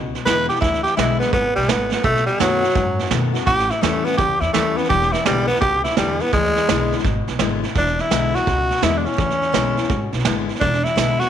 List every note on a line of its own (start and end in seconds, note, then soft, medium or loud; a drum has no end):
0.00 0.13 C#2 medium
0.00 0.60 B2 medium
0.15 snare soft
0.26 0.48 E2 medium
0.26 0.49 D3 medium
0.26 0.49 G#3 medium
0.26 0.49 B3 medium
0.26 0.48 E4 medium
0.26 0.48 B4 loud
0.26 snare loud
0.26 hi-hat pedal medium
0.49 0.62 B3 medium
0.49 0.61 E4 medium
0.49 0.60 G4 medium
0.49 snare soft
0.56 snare soft
0.61 0.84 D2 loud
0.61 1.30 E2 loud
0.61 0.83 E4 loud
0.61 kick loud
0.61 snare soft
0.74 snare soft
0.83 0.96 G4 medium
0.83 snare soft
0.96 1.20 B1 medium
0.96 1.32 D3 medium
0.96 1.32 G#3 loud
0.96 1.32 B3 loud
0.96 1.19 E4 medium
0.96 1.33 E4 loud
0.96 snare loud
0.96 hi-hat pedal loud
1.20 1.32 B3 medium
1.20 snare soft
1.33 1.47 G#1 medium
1.33 1.68 G#2 medium
1.33 1.55 B3 loud
1.33 kick loud
1.33 snare soft
1.56 1.64 B1 medium
1.56 1.71 G3 loud
1.56 snare soft
1.63 snare soft
1.68 1.91 G#1 medium
1.68 2.03 A3 medium
1.68 1.91 B3 medium
1.68 snare loud
1.68 hi-hat pedal medium
1.92 2.04 B3 medium
1.92 snare medium
2.03 2.27 B1 medium
2.03 2.73 B2 medium
2.03 2.25 A3 loud
2.03 kick loud
2.03 snare soft
2.16 snare soft
2.26 2.39 G3 loud
2.26 snare soft
2.38 2.63 F#2 medium
2.38 2.61 D#3 medium
2.38 3.10 F#3 loud
2.38 2.62 A3 medium
2.38 2.62 B3 loud
2.38 2.61 F#4 loud
2.38 snare loud
2.38 hi-hat pedal loud
2.62 2.76 B3 medium
2.62 2.75 F#4 medium
2.62 snare soft
2.69 snare soft
2.75 3.45 F#2 loud
2.75 2.98 G#2 medium
2.75 kick loud
2.75 snare soft
2.99 snare soft
3.05 snare soft
3.11 3.33 B2 medium
3.11 3.33 D#3 loud
3.11 3.34 A3 medium
3.11 3.34 B3 loud
3.11 3.32 F#4 medium
3.11 snare medium
3.11 hi-hat pedal medium
3.33 3.47 B3 soft
3.33 3.46 F#4 medium
3.33 snare soft
3.41 snare soft
3.46 3.69 A1 loud
3.46 4.16 A2 loud
3.46 3.72 G4 loud
3.46 kick loud
3.46 snare soft
3.59 snare soft
3.70 3.84 E4 loud
3.70 snare soft
3.81 4.05 E2 medium
3.81 4.04 E3 medium
3.81 4.05 G3 loud
3.81 4.06 A3 loud
3.81 4.05 C#4 loud
3.81 4.03 E4 loud
3.81 snare loud
3.81 hi-hat pedal medium
4.05 4.17 B3 loud
4.05 4.19 C#4 medium
4.05 4.18 E4 medium
4.05 snare soft
4.13 snare soft
4.18 4.33 C#2 medium
4.18 4.87 E2 loud
4.18 4.42 G4 loud
4.18 kick loud
4.18 snare soft
4.40 4.49 E2 loud
4.40 4.52 E4 loud
4.40 snare soft
4.53 4.76 D#2 medium
4.53 4.76 E3 medium
4.53 4.76 G3 loud
4.53 4.78 A3 loud
4.53 4.76 C#4 medium
4.53 4.74 E4 loud
4.53 snare loud
4.53 hi-hat pedal medium
4.75 4.88 B3 medium
4.75 4.89 C#4 soft
4.75 4.88 E4 medium
4.75 snare soft
4.84 snare soft
4.89 5.13 E1 loud
4.89 5.59 E2 loud
4.89 5.14 G4 loud
4.89 kick loud
4.89 snare soft
5.02 snare soft
5.12 5.25 E4 loud
5.12 snare soft
5.25 5.49 B1 medium
5.25 5.48 D3 medium
5.25 5.47 G3 loud
5.25 5.48 G#3 loud
5.25 5.48 B3 loud
5.25 5.47 E4 loud
5.25 snare loud
5.25 hi-hat pedal loud
5.47 5.60 B3 loud
5.47 5.62 B3 medium
5.47 5.61 E4 medium
5.47 snare soft
5.55 snare soft
5.61 5.84 C#2 loud
5.61 6.30 B2 medium
5.61 5.83 G4 loud
5.61 kick loud
5.61 snare soft
5.84 5.97 E4 medium
5.84 snare soft
5.90 snare soft
5.97 6.20 E2 loud
5.97 6.19 D3 medium
5.97 6.23 G3 loud
5.97 6.20 G#3 medium
5.97 6.20 B3 loud
5.97 6.20 E4 loud
5.97 snare loud
5.97 hi-hat pedal medium
6.20 6.33 B3 loud
6.20 6.33 B3 soft
6.20 6.33 E4 medium
6.20 snare soft
6.26 snare soft
6.32 6.55 D2 loud
6.32 7.02 E2 loud
6.32 7.02 G#3 loud
6.32 kick loud
6.32 snare soft
6.45 snare soft
6.56 snare soft
6.68 6.91 B1 medium
6.68 7.03 D3 medium
6.68 7.03 G#3 loud
6.68 7.04 B3 medium
6.68 7.04 E4 loud
6.68 snare loud
6.68 hi-hat pedal loud
6.92 snare soft
6.99 snare soft
7.04 7.19 G#1 loud
7.04 7.73 B2 medium
7.04 kick loud
7.04 snare soft
7.27 7.36 B1 loud
7.27 snare soft
7.39 7.62 G#1 loud
7.39 7.62 D3 medium
7.39 7.62 G#3 loud
7.39 7.62 B3 loud
7.39 7.62 E4 loud
7.39 snare loud
7.39 hi-hat pedal medium
7.63 7.76 B3 medium
7.63 7.75 E4 medium
7.63 snare soft
7.69 snare soft
7.75 7.98 E1 loud
7.75 8.45 E2 medium
7.75 8.02 D4 loud
7.75 kick loud
7.75 snare soft
7.87 snare soft
7.99 8.37 E4 loud
7.99 snare soft
8.10 8.34 B1 medium
8.10 8.33 D3 medium
8.10 8.33 G#3 loud
8.10 8.34 B3 medium
8.10 8.33 E4 loud
8.10 snare loud
8.10 hi-hat pedal loud
8.34 8.47 B3 medium
8.34 8.46 E4 medium
8.34 8.85 F#4 loud
8.34 snare soft
8.47 8.69 C#2 medium
8.47 9.16 B2 medium
8.47 kick loud
8.47 snare soft
8.71 snare soft
8.77 snare soft
8.82 9.05 E2 medium
8.82 9.04 D3 medium
8.82 9.05 G#3 loud
8.82 9.04 B3 medium
8.82 9.03 E4 medium
8.82 8.99 E4 medium
8.82 snare loud
8.82 hi-hat pedal medium
8.97 9.08 D4 medium
9.04 9.18 B3 soft
9.04 10.13 C#4 medium
9.04 9.17 E4 medium
9.04 snare soft
9.12 snare soft
9.17 9.41 D2 medium
9.17 9.86 E2 medium
9.17 kick loud
9.17 snare soft
9.30 snare soft
9.42 snare soft
9.52 9.77 B1 medium
9.52 9.75 D3 loud
9.52 9.76 G#3 loud
9.52 9.76 B3 medium
9.52 9.76 E4 loud
9.52 snare loud
9.52 hi-hat pedal medium
9.77 9.90 B3 medium
9.77 9.90 E4 medium
9.77 snare soft
9.83 snare soft
9.89 10.04 G#1 medium
9.89 10.59 B2 medium
9.89 kick loud
9.89 snare soft
10.13 10.21 B1 medium
10.13 snare soft
10.19 snare soft
10.25 10.48 G#1 medium
10.25 10.48 D3 loud
10.25 10.48 G#3 medium
10.25 10.48 B3 loud
10.25 10.48 E4 loud
10.25 snare loud
10.25 hi-hat pedal medium
10.49 10.62 B3 medium
10.49 10.61 E4 medium
10.49 snare soft
10.55 snare soft
10.61 10.84 E1 medium
10.61 11.29 E2 medium
10.61 10.85 D4 loud
10.61 kick loud
10.61 snare soft
10.74 snare soft
10.84 11.21 E4 loud
10.84 snare soft
10.96 11.18 B1 medium
10.96 11.18 D3 loud
10.96 11.19 G#3 loud
10.96 11.19 B3 loud
10.96 11.18 E4 medium
10.96 snare loud
10.96 hi-hat pedal loud
11.19 11.29 B3 medium
11.19 11.29 E4 medium
11.19 11.29 F#4 loud
11.19 snare soft